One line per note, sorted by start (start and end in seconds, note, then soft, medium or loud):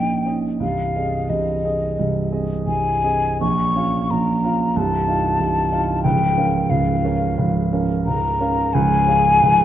0.00 0.64 A#1 medium
0.00 0.64 A#2 soft
0.00 0.26 C#4 soft
0.00 0.27 D#4 soft
0.00 0.26 D#5 soft
0.00 0.36 G5 medium
0.26 0.57 C#4 soft
0.26 0.58 D#4 soft
0.26 0.58 D#5 soft
0.60 0.94 C1 soft
0.60 0.94 C2 medium
0.60 1.31 F5 medium
0.96 1.27 C4 soft
0.96 1.27 G#4 soft
0.96 1.27 D#5 soft
1.29 1.64 C1 medium
1.29 1.64 C2 soft
1.29 2.33 D#5 medium
1.64 1.96 C4 soft
1.64 1.96 G#4 soft
1.64 1.96 D#5 soft
1.99 2.32 C1 medium
1.99 2.32 C2 medium
2.32 2.63 C4 soft
2.32 2.63 G#4 soft
2.32 2.64 D#5 soft
2.67 3.03 C1 medium
2.67 3.02 C2 soft
2.67 3.37 G#5 medium
3.04 3.38 C4 soft
3.04 3.38 G#4 medium
3.04 3.38 D#5 medium
3.41 3.76 A#1 medium
3.41 3.75 A#2 medium
3.41 4.12 C#6 loud
3.76 4.07 C#4 soft
3.76 4.07 F4 soft
3.76 4.08 F5 soft
4.11 4.43 A#1 medium
4.11 4.43 A#2 medium
4.11 4.78 A#5 medium
4.44 4.74 C#4 soft
4.44 4.73 F4 soft
4.44 4.74 F5 medium
4.76 5.08 C1 medium
4.76 5.08 C2 medium
4.76 6.02 A5 loud
5.08 5.37 D#4 medium
5.08 5.38 F4 soft
5.08 5.38 F5 medium
5.39 5.71 C1 medium
5.39 5.71 C2 medium
5.72 6.01 D#4 medium
5.72 6.02 F4 soft
5.72 6.02 F5 medium
6.03 6.36 C#1 medium
6.03 6.36 C#2 medium
6.03 6.71 G5 loud
6.37 6.68 C#4 soft
6.37 6.68 A#4 medium
6.37 6.68 F5 medium
6.70 7.03 C#1 medium
6.70 7.04 C#2 medium
6.70 7.72 F5 medium
7.04 7.35 C#4 medium
7.04 7.35 A#4 medium
7.04 7.35 F5 medium
7.38 7.71 C#1 medium
7.38 7.71 C#2 medium
7.73 8.04 C#4 medium
7.73 8.04 A#4 medium
7.73 8.04 F5 medium
8.06 8.40 C#1 medium
8.06 8.40 C#2 medium
8.06 8.75 A#5 loud
8.41 8.71 C#4 medium
8.41 8.71 A#4 medium
8.41 8.72 F5 medium
8.73 9.07 C#1 medium
8.73 9.07 C#2 medium
8.73 9.65 G#5 loud
9.08 9.38 C#4 medium
9.08 9.38 G#4 medium
9.08 9.38 F5 medium
9.42 9.65 C#1 medium
9.42 9.65 C#2 medium